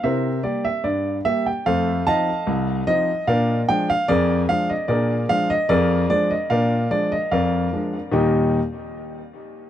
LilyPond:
<<
  \new Staff \with { instrumentName = "Grand piano" } { \time 2/4 \key ees \major \tempo 4 = 74 <bes' c'' e''>8 d''16 e''16 d''8 e''16 g''16 | <a' c'' f''>8 <ees'' f'' a''>4 ees''8 | <bes' d'' f''>8 g''16 f''16 <aes' bes' d''>8 f''16 ees''16 | <aes' bes' d''>8 f''16 ees''16 <aes' bes' d''>8 d''16 ees''16 |
<bes' d'' f''>8 d''16 ees''16 <bes' d'' f''>4 | <ees, bes, g bes ees' g' ees''>8 r4. | }
  \new Staff \with { instrumentName = "Grand piano" } { \clef bass \time 2/4 \key ees \major <c e'>8 <g bes g'>8 g,8 <g bes g'>8 | <f, a>8 <f c' ees'>8 c,8 <f c' ees'>8 | <bes, d'>8 <f aes d'>8 f,8 <f aes d'>8 | <bes, d'>8 <f aes d'>8 f,8 <f aes d'>8 |
<bes, d'>8 <f aes d'>8 f,8 <f aes d'>8 | r2 | }
>>